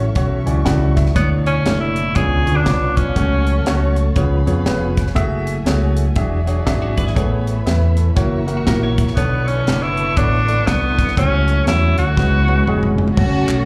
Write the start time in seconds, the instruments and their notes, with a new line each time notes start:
Already playing: tonewheel organ E3 F#3 E4, string section A4 E5 F#5 C#6
0.15 fingered electric bass B1, upright piano C#4 E4 F#4 C#5, kick, closed hi-hat
0.46 fingered electric bass C#2, upright piano C#4 E4 F#4 D5 G#5, closed hi-hat
0.65 fingered electric bass C#2, upright piano C#3 E4 F#4 D5 F#5, kick, snare, closed hi-hat
0.97 upright piano E5, kick, snare, closed hi-hat
1.06 snare
1.15 fingered electric bass D2, tonewheel organ B2 A3 E4, upright piano D3 A3 D4 E4 C#5, tenor saxophone B3, string section A5, kick, closed hi-hat
1.46 tenor saxophone C#4, closed hi-hat
1.66 fingered electric bass F#1, upright piano A3 D4 E4 C#5, snare, closed hi-hat
1.80 tenor saxophone E4
1.96 closed hi-hat
2.15 fingered electric bass C#2, upright piano C#3 B3 D4 F4 C#5, tonewheel organ B3 F4, string section D4 F5 B5 C#6, tenor saxophone G#4, kick, closed hi-hat
2.46 fingered electric bass D2, upright piano B3 D4 F4 G#4, closed hi-hat
2.56 tenor saxophone D4
2.65 fingered electric bass C2, upright piano B3 D4 F4 C#5, kick, snare, closed hi-hat
2.96 tenor saxophone C#4, kick, closed hi-hat
3.16 fingered electric bass C#2, upright piano C#3 A3 C#4 F#4 C#5, tonewheel organ F#3 A3 A4, string section C#5 F#5 A5 C#6, kick, closed hi-hat
3.47 closed hi-hat
3.65 fingered electric bass C#2, upright piano A3 C#4 F#4 C#5, snare, closed hi-hat
3.96 closed hi-hat
4.16 fingered electric bass C#2, upright piano C#3 B3 F4 G#4 C#5, tonewheel organ F3 B3 G#4, string section C#5 F5 G#5 B5, kick, closed hi-hat
4.46 fingered electric bass F2, upright piano B3 F4 G#4 C#5, closed hi-hat
4.65 fingered electric bass F1, upright piano B3 F4 G#4 B4 C#5, snare, closed hi-hat
4.97 kick, snare, closed hi-hat
5.07 snare
5.15 fingered electric bass F#1, tonewheel organ F#3 A3 E4, upright piano A3 F#4 G#4 E5, string section A3 E5 F#5, kick, closed hi-hat
5.47 closed hi-hat
5.66 fingered electric bass C#2, upright piano A3 F#4 G#4 C#5, snare, closed hi-hat
5.97 closed hi-hat
6.16 fingered electric bass E1, upright piano E3 D4 F#4 G#4 E5, tonewheel organ D4, string section D5 E5 F#5, kick, closed hi-hat
6.46 upright piano D4 F#4 G#4 C#5, closed hi-hat
6.65 fingered electric bass G#1, upright piano D4 F#4 G#4 E5, kick, snare, closed hi-hat
6.82 clean electric guitar D4 F#4
6.97 clean electric guitar G#4 B4, kick, closed hi-hat
7.07 clean electric guitar E4 G#4, snare
7.15 fingered electric bass A1, upright piano A2 B3 G#4 A4 C#5, tonewheel organ A3 B3 E4 B4, string section C#5 E5 B5, kick, closed hi-hat
7.47 closed hi-hat
7.66 fingered electric bass E2, upright piano B4 E5, snare, closed hi-hat
7.97 upright piano E4 A4, closed hi-hat
8.16 fingered electric bass F#1, tonewheel organ E3 A#3 F#4, upright piano A#3 E4 F#4 C#5, string section E5 F#5 A#5 C#6, kick, closed hi-hat
8.47 upright piano A#3 E4 F#4 A#4, closed hi-hat
8.57 clean electric guitar F#4
8.67 fingered electric bass A#1, upright piano A#3 E4 F#4 A#4, clean electric guitar F#4 A#4, kick, snare, closed hi-hat
8.83 clean electric guitar A#4 C#5
8.98 kick, closed hi-hat
9.08 snare
9.16 fingered electric bass B1, upright piano B2 B3 D4 A4 C#5, tonewheel organ D3 B3 A4, tenor saxophone B3, string section B4 A5 B5, kick, closed hi-hat
9.47 tenor saxophone C#4, closed hi-hat
9.66 fingered electric bass F#1, upright piano B3 D4 A4 D5, snare, closed hi-hat
9.83 tenor saxophone E4
9.97 closed hi-hat
10.17 fingered electric bass A1, upright piano B3 D4 A4 C#5, tenor saxophone D4, kick, closed hi-hat
10.47 upright piano B3 D4 A4 D5, closed hi-hat
10.67 fingered electric bass C2, tenor saxophone B3, upright piano B3 D4 A4 D5, kick, snare, closed hi-hat
10.99 kick, snare, closed hi-hat
11.08 snare
11.17 fingered electric bass C#2, upright piano C#3 A3 C#4 F#4 C#5, tonewheel organ F#3 A3, tenor saxophone C#4, string section C#5 F#5 A5, kick, closed hi-hat
11.48 closed hi-hat
11.66 fingered electric bass E2, upright piano A3 C#4 F#4 C#5, tenor saxophone E4, snare, closed hi-hat
11.98 fingered electric bass D2, tenor saxophone F#4, closed hi-hat
12.16 fingered electric bass C#2, upright piano C#3 G#3 C#4 F#4 B4, tonewheel organ F#3 B3 G#4, string section G#5 B5, kick, snare
12.48 upright piano G#3 C#4 F#4 B4, high tom
12.67 fingered electric bass F1, upright piano G#3 C#4 F#4 G#4, mid tom
12.83 mid tom
12.98 floor tom
13.08 floor tom
13.17 fingered electric bass F#1, tonewheel organ F#3 A4 C#5 A5, upright piano A3 C#4 F#4 C#5, string section A3 C#4 F#4, kick, crash
13.48 fingered electric bass B1, clap, ride bell